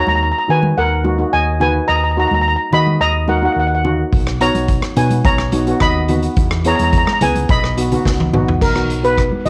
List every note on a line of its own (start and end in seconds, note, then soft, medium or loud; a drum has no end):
0.00 0.26 A#3 medium
0.00 0.26 D#4 medium
0.00 0.26 F#4 medium
0.00 0.07 A#5 medium
0.07 0.29 D#2 loud
0.07 0.14 A#5 medium
0.07 high conga medium
0.16 0.22 A#5 medium
0.23 0.30 A#5 medium
0.32 0.37 A#5 medium
0.38 0.45 A#5 medium
0.48 0.71 D#3 loud
0.48 0.82 A#3 medium
0.48 0.82 D#4 medium
0.48 0.82 F#4 medium
0.48 0.76 B4 medium
0.48 0.78 G#5 medium
0.63 high conga medium
0.77 1.21 D#2 medium
0.77 1.30 A#4 medium
0.77 1.35 F#5 medium
1.04 1.13 A#3 medium
1.04 1.13 D#4 medium
1.04 1.13 F#4 medium
1.04 high conga medium
1.18 1.44 A#3 medium
1.18 1.44 D#4 medium
1.18 1.44 F#4 medium
1.33 1.77 D#2 medium
1.33 1.59 D#5 medium
1.33 1.60 G#5 loud
1.60 1.94 A#3 medium
1.60 1.94 D#4 medium
1.60 1.94 F#4 medium
1.60 1.87 B4 medium
1.60 1.89 G#5 loud
1.60 low conga medium
1.88 2.22 D#2 loud
1.88 1.95 D#5 medium
1.88 1.95 A#5 loud
1.96 2.02 A#5 medium
2.04 2.10 A#5 medium
2.11 2.18 A#5 medium
2.16 2.50 A#3 medium
2.16 2.50 D#4 medium
2.16 2.50 F#4 loud
2.16 2.26 A#5 medium
2.27 2.53 D#2 medium
2.27 2.33 A#5 medium
2.27 high conga medium
2.34 2.40 A#5 medium
2.41 2.47 A#5 medium
2.48 2.55 A#5 medium
2.56 2.64 A#5 medium
2.72 2.94 D#3 loud
2.72 3.06 A#3 medium
2.72 3.06 D#4 medium
2.72 3.06 F#4 medium
2.72 2.99 D#5 medium
2.72 3.02 B5 loud
2.72 low conga medium
2.87 high conga medium
3.00 3.44 D#2 medium
3.00 3.27 D#5 medium
3.00 3.27 A#5 loud
3.27 3.37 A#3 medium
3.27 3.37 D#4 medium
3.27 3.37 F#4 medium
3.27 3.36 A#4 medium
3.27 3.36 F#5 medium
3.27 high conga medium
3.38 3.44 F#5 medium
3.42 3.68 A#3 medium
3.42 3.68 D#4 medium
3.42 3.68 F#4 loud
3.42 3.51 F#5 medium
3.53 4.00 D#2 medium
3.53 3.58 F#5 medium
3.60 3.66 F#5 medium
3.67 3.74 F#5 medium
3.75 3.81 F#5 medium
3.84 4.12 A#3 medium
3.84 4.13 D#4 medium
3.84 4.13 F#4 loud
3.84 low conga medium
4.12 4.46 B1 loud
4.12 kick loud
4.12 closed hi-hat medium
4.27 cross-stick medium
4.40 4.74 B3 medium
4.40 4.74 D#4 medium
4.40 4.75 F#4 medium
4.40 4.93 C#5 medium
4.40 4.93 A#5 loud
4.40 closed hi-hat medium
4.55 4.77 B1 loud
4.55 closed hi-hat medium
4.55 high conga medium
4.68 kick medium
4.68 closed hi-hat medium
4.82 cross-stick medium
4.96 5.19 B2 medium
4.96 5.30 B3 medium
4.96 5.30 D#4 medium
4.96 5.31 F#4 medium
4.96 5.10 B4 medium
4.96 5.10 G#5 medium
4.96 closed hi-hat medium
4.96 low conga medium
5.10 closed hi-hat medium
5.10 high conga medium
5.25 5.69 B1 medium
5.25 5.77 C#5 medium
5.25 5.77 A#5 loud
5.25 kick loud
5.25 closed hi-hat medium
5.38 cross-stick medium
5.52 5.61 B3 medium
5.52 5.61 D#4 medium
5.52 5.62 F#4 medium
5.52 closed hi-hat medium
5.52 high conga medium
5.67 5.92 B3 medium
5.67 5.92 D#4 medium
5.67 5.93 F#4 loud
5.67 closed hi-hat medium
5.80 6.25 D#2 medium
5.80 6.21 D#5 medium
5.80 6.21 B5 loud
5.80 kick medium
5.80 cross-stick medium
5.80 closed hi-hat medium
6.08 6.37 B3 medium
6.08 6.37 D#4 medium
6.08 6.37 F#4 medium
6.08 closed hi-hat medium
6.08 low conga medium
6.22 closed hi-hat medium
6.36 6.70 E2 loud
6.36 kick loud
6.36 closed hi-hat medium
6.51 cross-stick loud
6.64 6.99 B3 medium
6.64 6.99 E4 medium
6.64 6.99 G#4 medium
6.64 6.73 C#5 medium
6.64 6.73 A#5 medium
6.64 closed hi-hat medium
6.75 6.81 A#5 medium
6.75 closed hi-hat medium
6.80 7.01 E2 medium
6.80 6.89 A#5 medium
6.80 high conga medium
6.90 6.96 A#5 medium
6.90 kick loud
6.90 closed hi-hat medium
6.98 7.04 A#5 medium
7.06 7.11 A#5 medium
7.06 cross-stick medium
7.06 high conga medium
7.13 7.18 A#5 medium
7.21 7.44 C#2 loud
7.21 7.49 B3 medium
7.21 7.49 E4 medium
7.21 7.49 G#4 medium
7.21 7.48 B4 medium
7.21 7.51 G#5 medium
7.21 closed hi-hat loud
7.21 high conga medium
7.21 low conga medium
7.35 closed hi-hat medium
7.35 high conga medium
7.49 7.94 B1 medium
7.49 8.30 D#5 medium
7.49 8.30 B5 loud
7.49 kick loud
7.49 closed hi-hat medium
7.64 cross-stick medium
7.77 7.86 B3 medium
7.77 7.86 D#4 medium
7.77 7.86 F#4 medium
7.77 closed hi-hat medium
7.92 8.17 B3 medium
7.92 8.17 D#4 medium
7.92 8.17 F#4 medium
7.92 closed hi-hat medium
7.92 low conga medium
8.05 8.31 C#2 medium
8.05 kick medium
8.05 snare medium
8.20 high tom medium
8.33 8.59 B1 medium
8.33 8.61 B3 medium
8.33 8.61 D#4 medium
8.33 8.61 F#4 loud
8.33 mid tom medium
8.33 low conga medium
8.49 floor tom medium
8.61 9.28 B1 medium
8.61 9.05 A#4 medium
8.61 kick loud
8.61 crash medium
8.75 8.92 B3 medium
8.75 8.92 D#4 medium
8.75 8.92 F#4 medium
8.75 cross-stick medium
8.90 closed hi-hat medium
9.03 9.29 B3 medium
9.03 9.29 D#4 medium
9.03 9.29 F#4 medium
9.03 9.47 B4 loud
9.03 closed hi-hat medium
9.18 kick medium
9.18 cross-stick medium
9.18 closed hi-hat medium
9.32 high conga medium
9.46 9.49 B1 medium
9.46 9.49 B3 medium
9.46 9.49 D#4 medium
9.46 9.49 F#4 medium
9.46 9.49 D#5 medium
9.46 closed hi-hat medium
9.46 low conga medium